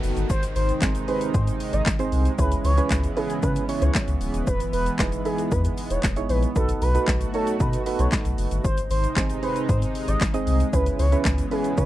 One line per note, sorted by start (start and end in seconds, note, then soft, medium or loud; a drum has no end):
0.00 0.12 F#1 medium
0.00 2.34 D#3 medium
0.00 0.27 A3 medium
0.00 0.27 B3 medium
0.00 0.29 B3 medium
0.00 0.30 D#4 medium
0.00 0.27 F#4 loud
0.00 0.30 F#4 medium
0.00 0.30 A4 loud
0.00 open hi-hat medium
0.00 downlifter medium
0.00 shaker medium
0.17 0.25 G1 medium
0.17 closed hi-hat medium
0.17 shaker medium
0.29 0.46 G#1 loud
0.29 2.36 C3 medium
0.29 4.43 G#3 medium
0.29 2.36 D#4 loud
0.29 0.47 C5 loud
0.29 kick loud
0.29 shaker medium
0.43 closed hi-hat medium
0.43 shaker medium
0.56 0.72 G#1 loud
0.56 0.73 C5 medium
0.56 open hi-hat medium
0.56 shaker medium
0.69 closed hi-hat medium
0.69 shaker medium
0.69 shaker soft
0.82 0.98 G#1 loud
0.82 1.04 C4 medium
0.82 1.04 D#4 medium
0.82 1.04 G#4 medium
0.82 1.04 C5 medium
0.82 kick loud
0.82 snare medium
0.82 clap loud
0.82 shaker medium
0.95 closed hi-hat medium
0.95 shaker medium
1.08 1.85 C4 medium
1.08 1.85 D#4 medium
1.08 1.85 G#4 medium
1.08 1.25 B4 medium
1.08 1.85 C5 medium
1.08 open hi-hat medium
1.08 shaker soft
1.21 closed hi-hat medium
1.21 shaker medium
1.34 1.50 G#2 loud
1.34 1.43 C5 medium
1.34 kick loud
1.34 shaker medium
1.47 closed hi-hat medium
1.47 shaker soft
1.47 shaker medium
1.60 open hi-hat medium
1.60 shaker medium
1.73 1.81 G#1 loud
1.73 1.82 D#5 medium
1.73 closed hi-hat medium
1.73 shaker medium
1.86 2.02 G#1 loud
1.86 kick loud
1.86 snare loud
1.86 clap loud
1.86 shaker medium
1.99 2.32 C4 loud
1.99 2.32 D#4 medium
1.99 2.32 G#4 loud
1.99 2.33 C5 loud
1.99 closed hi-hat medium
1.99 shaker medium
1.99 shaker soft
2.12 2.28 C2 loud
2.12 open hi-hat medium
2.12 shaker medium
2.25 closed hi-hat medium
2.25 shaker medium
2.38 2.54 C#2 loud
2.38 4.45 C#3 medium
2.38 6.52 E3 loud
2.38 8.60 B3 medium
2.38 2.71 C#4 medium
2.38 2.71 E4 medium
2.38 2.71 G#4 medium
2.38 2.56 B4 loud
2.38 2.72 B4 loud
2.38 kick loud
2.38 shaker medium
2.51 closed hi-hat medium
2.51 shaker medium
2.64 2.80 C#2 loud
2.64 2.82 C#5 medium
2.64 open hi-hat medium
2.64 shaker medium
2.77 3.10 C#4 medium
2.77 3.11 E4 medium
2.77 3.11 G#4 medium
2.77 3.11 B4 loud
2.77 closed hi-hat medium
2.77 shaker medium
2.90 3.07 C#2 medium
2.90 kick loud
2.90 snare medium
2.90 clap loud
2.90 shaker medium
3.04 closed hi-hat medium
3.04 shaker medium
3.16 3.39 C#4 medium
3.16 3.39 E4 medium
3.16 3.34 G#4 medium
3.16 3.39 G#4 medium
3.16 3.39 B4 medium
3.16 open hi-hat medium
3.16 shaker soft
3.30 closed hi-hat medium
3.30 shaker medium
3.42 3.59 C#3 loud
3.42 3.65 C#4 medium
3.42 3.65 E4 medium
3.42 3.65 G#4 medium
3.42 3.51 B4 medium
3.42 3.65 B4 loud
3.42 kick loud
3.42 shaker medium
3.56 closed hi-hat medium
3.56 shaker medium
3.69 4.47 C#4 medium
3.69 4.47 E4 medium
3.69 4.47 G#4 medium
3.69 4.47 C#5 loud
3.69 open hi-hat medium
3.69 shaker medium
3.82 3.90 C#2 loud
3.82 3.90 C#5 medium
3.82 closed hi-hat medium
3.82 shaker medium
3.95 kick loud
3.95 snare loud
3.95 clap loud
3.95 shaker medium
4.08 4.16 C#2 medium
4.08 closed hi-hat medium
4.08 shaker soft
4.08 shaker medium
4.21 4.29 D1 medium
4.21 open hi-hat medium
4.21 shaker medium
4.34 4.42 D#1 medium
4.34 closed hi-hat medium
4.34 shaker medium
4.47 4.63 E1 loud
4.47 6.54 G#3 medium
4.47 4.64 B4 loud
4.47 kick loud
4.47 shaker medium
4.60 closed hi-hat medium
4.60 shaker medium
4.73 4.89 E1 loud
4.73 4.90 B4 medium
4.73 open hi-hat medium
4.73 shaker medium
4.86 closed hi-hat medium
4.86 shaker medium
4.86 shaker soft
4.99 5.15 E1 medium
4.99 5.21 D#4 medium
4.99 5.21 E4 medium
4.99 5.21 G#4 medium
4.99 5.21 B4 medium
4.99 kick loud
4.99 snare medium
4.99 clap loud
4.99 shaker medium
5.12 closed hi-hat medium
5.12 shaker medium
5.25 6.02 D#4 medium
5.25 6.02 E4 medium
5.25 5.42 G#4 medium
5.25 6.03 G#4 medium
5.25 6.03 B4 medium
5.25 open hi-hat medium
5.25 shaker soft
5.38 closed hi-hat medium
5.38 shaker medium
5.51 5.68 E2 loud
5.51 5.60 B4 medium
5.51 kick loud
5.51 shaker medium
5.64 closed hi-hat medium
5.64 shaker medium
5.77 open hi-hat medium
5.77 shaker medium
5.90 5.98 E1 loud
5.90 5.99 C#5 medium
5.90 closed hi-hat medium
5.90 shaker medium
6.03 6.20 E1 loud
6.03 kick loud
6.03 snare loud
6.03 clap loud
6.03 shaker medium
6.16 6.50 D#4 medium
6.16 6.50 E4 medium
6.16 6.50 G#4 medium
6.16 6.50 C#5 medium
6.16 closed hi-hat medium
6.16 shaker medium
6.16 shaker soft
6.29 6.46 A#1 loud
6.29 6.38 B4 medium
6.29 open hi-hat medium
6.29 shaker medium
6.43 closed hi-hat medium
6.43 shaker medium
6.55 6.72 B1 loud
6.55 8.62 A3 medium
6.55 6.89 D#4 medium
6.55 8.62 F#4 medium
6.55 6.89 F#4 medium
6.55 6.73 A4 loud
6.55 6.89 A4 medium
6.55 6.89 B4 loud
6.55 kick loud
6.55 shaker medium
6.69 closed hi-hat medium
6.69 shaker medium
6.82 6.98 B1 loud
6.82 6.99 B4 medium
6.82 open hi-hat medium
6.82 shaker soft
6.82 shaker medium
6.95 7.28 D#4 medium
6.95 7.28 F#4 medium
6.95 7.28 A4 medium
6.95 7.28 B4 loud
6.95 closed hi-hat medium
6.95 shaker medium
7.08 7.24 B1 loud
7.08 kick loud
7.08 snare medium
7.08 clap loud
7.08 shaker medium
7.21 closed hi-hat medium
7.21 shaker medium
7.34 7.56 D#4 medium
7.34 7.56 F#4 medium
7.34 7.56 A4 medium
7.34 7.51 A4 medium
7.34 7.56 C#5 medium
7.34 open hi-hat medium
7.34 shaker soft
7.47 closed hi-hat medium
7.47 shaker medium
7.60 7.76 B2 loud
7.60 7.82 D#4 medium
7.60 7.82 F#4 medium
7.60 7.82 A4 medium
7.60 7.69 B4 medium
7.60 7.82 B4 loud
7.60 kick loud
7.60 shaker medium
7.73 closed hi-hat medium
7.73 shaker soft
7.73 shaker medium
7.86 8.64 D#4 medium
7.86 8.64 F#4 medium
7.86 8.64 A4 medium
7.86 8.65 B4 loud
7.86 open hi-hat medium
7.86 shaker medium
7.99 8.07 B1 medium
7.99 8.08 C#5 medium
7.99 closed hi-hat medium
7.99 shaker medium
7.99 shaker soft
8.12 kick loud
8.12 snare loud
8.12 clap loud
8.12 shaker medium
8.25 8.33 B1 medium
8.25 closed hi-hat medium
8.25 shaker medium
8.25 shaker soft
8.38 8.46 F#1 loud
8.38 open hi-hat medium
8.38 shaker medium
8.51 8.59 G1 medium
8.51 closed hi-hat medium
8.51 shaker medium
8.64 8.80 G#1 loud
8.64 10.71 C3 medium
8.64 11.86 G#3 medium
8.64 10.71 D#4 medium
8.64 8.82 C5 loud
8.64 kick loud
8.64 shaker medium
8.77 closed hi-hat medium
8.77 shaker medium
8.90 9.06 G#1 loud
8.90 9.08 C5 medium
8.90 open hi-hat medium
8.90 shaker soft
8.90 shaker medium
9.04 closed hi-hat medium
9.04 shaker medium
9.04 shaker soft
9.16 9.33 G#1 loud
9.16 9.38 C4 medium
9.16 9.39 D#4 medium
9.16 9.39 G#4 medium
9.16 9.39 C5 medium
9.16 kick loud
9.16 snare medium
9.16 clap loud
9.16 shaker medium
9.30 closed hi-hat medium
9.30 shaker medium
9.42 10.20 C4 medium
9.42 10.20 D#4 medium
9.42 10.20 G#4 medium
9.42 9.60 B4 medium
9.42 10.20 C5 medium
9.42 open hi-hat medium
9.42 shaker soft
9.56 closed hi-hat medium
9.56 shaker medium
9.69 9.85 G#2 loud
9.69 9.77 C5 medium
9.69 kick loud
9.69 shaker medium
9.82 closed hi-hat medium
9.82 shaker soft
9.82 shaker medium
9.95 open hi-hat medium
9.95 shaker medium
10.08 10.16 G#1 loud
10.08 10.16 D#5 medium
10.08 closed hi-hat medium
10.08 shaker medium
10.21 10.37 G#1 loud
10.21 kick loud
10.21 snare loud
10.21 clap loud
10.21 shaker medium
10.34 10.67 C4 loud
10.34 10.67 D#4 medium
10.34 10.67 G#4 medium
10.34 10.67 D#5 loud
10.34 closed hi-hat medium
10.34 shaker medium
10.34 shaker soft
10.47 10.63 C2 loud
10.47 open hi-hat medium
10.47 shaker medium
10.60 closed hi-hat medium
10.60 shaker medium
10.73 10.89 C#2 loud
10.73 11.86 C#3 medium
10.73 11.86 E3 medium
10.73 11.86 B3 medium
10.73 11.06 C#4 medium
10.73 11.06 E4 medium
10.73 11.06 G#4 medium
10.73 10.90 B4 loud
10.73 11.06 B4 loud
10.73 kick loud
10.73 shaker medium
10.86 closed hi-hat medium
10.86 shaker medium
10.99 11.15 C#2 loud
10.99 11.16 C#5 medium
10.99 open hi-hat medium
10.99 shaker medium
11.12 11.45 C#4 loud
11.12 11.45 E4 medium
11.12 11.45 G#4 medium
11.12 11.45 B4 loud
11.12 closed hi-hat medium
11.12 shaker medium
11.25 11.41 C#2 medium
11.25 kick loud
11.25 snare medium
11.25 clap loud
11.25 shaker medium
11.38 closed hi-hat medium
11.38 shaker medium
11.51 11.73 C#4 medium
11.51 11.73 E4 medium
11.51 11.69 G#4 medium
11.51 11.74 G#4 medium
11.51 11.74 B4 medium
11.51 open hi-hat medium
11.51 shaker medium
11.64 closed hi-hat medium
11.64 shaker medium
11.77 11.86 C#3 loud
11.77 11.86 C#4 medium
11.77 11.86 E4 medium
11.77 11.86 G#4 medium
11.77 11.86 B4 medium
11.77 11.86 C#5 loud
11.77 kick loud
11.77 shaker medium